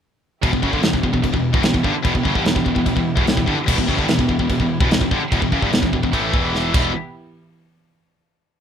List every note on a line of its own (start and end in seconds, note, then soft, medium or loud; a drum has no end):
0.43 0.53 E1 loud
0.43 0.52 E2 medium
0.43 0.52 B2 loud
0.43 6.70 E3 medium
0.43 6.71 B3 medium
0.43 6.70 E4 medium
0.43 6.70 G4 medium
0.43 kick loud
0.43 china medium
0.53 0.63 E1 medium
0.53 0.62 E2 medium
0.53 0.62 B2 medium
0.53 kick medium
0.62 0.73 F#1 medium
0.62 0.72 F#2 medium
0.62 0.73 C#3 loud
0.62 kick medium
0.73 0.83 G1 loud
0.73 0.82 G2 medium
0.73 0.83 D3 loud
0.73 kick medium
0.83 0.93 E1 medium
0.83 0.92 E2 medium
0.83 0.93 B2 medium
0.83 snare loud
0.83 china medium
0.93 1.03 E1 medium
0.93 1.03 E2 medium
0.93 1.03 B2 medium
0.93 kick medium
1.03 1.13 E1 medium
1.03 1.12 E2 medium
1.03 1.12 B2 medium
1.03 kick medium
1.13 1.23 E1 medium
1.13 1.22 E2 medium
1.13 1.23 B2 medium
1.13 kick medium
1.23 1.33 E1 medium
1.23 1.32 E2 medium
1.23 1.33 B2 medium
1.23 kick medium
1.23 china medium
1.33 1.53 E1 medium
1.33 1.50 E2 medium
1.33 1.50 B2 medium
1.33 kick medium
1.53 1.63 E1 medium
1.53 1.62 E2 medium
1.53 1.63 B2 medium
1.53 kick loud
1.63 1.74 E1 medium
1.63 1.72 E2 medium
1.63 1.72 B2 medium
1.63 snare loud
1.63 china medium
1.73 1.84 E1 medium
1.73 1.83 E2 medium
1.73 1.84 B2 medium
1.73 kick medium
1.83 1.93 G1 medium
1.83 1.94 G2 medium
1.83 1.94 D3 medium
1.83 kick medium
1.94 muted picked electric bass stroke soft
1.94 muted distorted electric guitar stroke medium
2.03 2.14 E1 medium
2.03 2.13 E2 medium
2.03 2.13 B2 loud
2.03 kick loud
2.03 china medium
2.14 2.24 E1 medium
2.14 2.23 E2 medium
2.14 2.24 B2 medium
2.14 kick medium
2.23 2.35 F#1 medium
2.23 2.33 F#2 medium
2.23 2.34 C#3 loud
2.23 kick medium
2.34 2.44 G1 loud
2.34 2.44 G2 medium
2.34 2.44 D3 loud
2.34 kick medium
2.44 2.55 E1 medium
2.44 2.54 E2 medium
2.44 2.54 B2 medium
2.44 snare loud
2.44 china medium
2.55 2.65 E1 medium
2.55 2.64 E2 medium
2.55 2.64 B2 medium
2.55 kick medium
2.65 2.76 E1 medium
2.65 2.74 E2 medium
2.65 2.74 B2 medium
2.65 kick medium
2.75 2.85 E1 medium
2.75 2.84 E2 medium
2.75 2.85 B2 medium
2.75 kick medium
2.86 2.96 E1 medium
2.86 2.94 E2 medium
2.86 2.95 B2 medium
2.86 kick medium
2.86 china medium
2.95 3.16 E1 medium
2.95 3.12 E2 medium
2.95 3.13 B2 medium
2.95 kick medium
3.16 3.26 E1 medium
3.16 3.24 E2 medium
3.16 3.25 B2 medium
3.16 kick loud
3.25 3.37 E1 medium
3.25 3.36 E2 medium
3.25 3.36 B2 medium
3.25 snare loud
3.25 china medium
3.37 3.47 E1 medium
3.37 3.46 E2 medium
3.37 3.46 B2 medium
3.37 kick medium
3.46 3.57 G1 medium
3.46 3.56 G2 medium
3.46 3.57 D3 loud
3.46 kick medium
3.56 muted distorted electric guitar stroke medium
3.56 muted picked electric bass stroke soft
3.66 3.77 E1 loud
3.66 3.77 E2 medium
3.66 3.77 B2 loud
3.66 kick loud
3.66 china medium
3.66 crash loud
3.78 3.88 E1 medium
3.78 3.87 E2 medium
3.78 3.89 B2 medium
3.78 kick medium
3.87 3.98 F#1 medium
3.87 3.97 F#2 medium
3.87 3.98 C#3 loud
3.87 kick medium
3.98 4.08 G1 loud
3.98 4.07 G2 loud
3.98 4.07 D3 loud
3.98 kick medium
4.08 4.18 E1 medium
4.08 4.17 E2 medium
4.08 4.17 B2 medium
4.08 snare loud
4.08 china medium
4.18 4.28 E1 medium
4.18 4.27 E2 medium
4.18 4.27 B2 medium
4.18 kick medium
4.28 4.39 E1 medium
4.28 4.38 E2 medium
4.28 4.38 B2 medium
4.28 kick medium
4.39 4.49 E1 medium
4.39 4.49 E2 medium
4.39 4.49 B2 medium
4.39 kick medium
4.49 4.59 E1 medium
4.49 4.59 E2 medium
4.49 4.60 B2 medium
4.49 kick medium
4.49 china medium
4.60 4.79 E1 medium
4.60 4.77 E2 medium
4.60 4.77 B2 medium
4.60 kick medium
4.80 4.90 E1 medium
4.80 4.90 E2 medium
4.80 4.90 B2 medium
4.80 kick loud
4.91 5.00 E1 medium
4.91 4.99 E2 medium
4.91 5.00 B2 medium
4.91 snare loud
4.91 china medium
5.01 5.11 E1 medium
5.01 5.11 E2 medium
5.01 5.11 B2 medium
5.01 kick medium
5.11 5.21 G1 medium
5.11 5.21 G2 medium
5.11 5.21 D3 medium
5.11 kick medium
5.21 muted picked electric bass stroke soft
5.21 muted distorted electric guitar stroke medium
5.32 5.41 E1 loud
5.32 5.41 E2 loud
5.32 5.41 B2 loud
5.32 kick loud
5.32 china medium
5.42 5.51 E1 medium
5.42 5.52 E2 medium
5.42 5.52 B2 medium
5.42 kick medium
5.52 5.62 F#1 medium
5.52 5.61 F#2 medium
5.52 5.62 C#3 loud
5.52 kick medium
5.61 5.72 G1 loud
5.61 5.71 G2 medium
5.61 5.72 D3 loud
5.61 kick medium
5.72 5.82 E1 medium
5.72 5.81 E2 medium
5.72 5.81 B2 medium
5.72 snare loud
5.72 china medium
5.82 5.92 E1 medium
5.82 5.92 E2 medium
5.82 5.92 B2 medium
5.82 kick medium
5.93 6.02 E1 medium
5.93 6.02 E2 medium
5.93 6.02 B2 medium
5.93 kick medium
6.03 6.12 E1 medium
6.03 6.13 E2 medium
6.03 6.13 B2 medium
6.03 kick medium
6.13 6.32 A1 medium
6.13 6.33 A2 loud
6.13 6.32 E3 loud
6.13 6.34 A3 loud
6.13 kick medium
6.13 china medium
6.33 6.72 E1 loud
6.33 6.72 E2 medium
6.33 6.73 B2 medium
6.33 6.74 E3 loud
6.33 kick loud
6.55 snare medium
6.73 6.93 E1 medium
6.73 6.90 E2 medium
6.73 6.91 B2 medium
6.73 6.91 E3 loud
6.73 6.94 E3 medium
6.73 6.94 B3 medium
6.73 6.94 E4 medium
6.73 6.94 G4 medium
6.73 kick loud
6.73 crash loud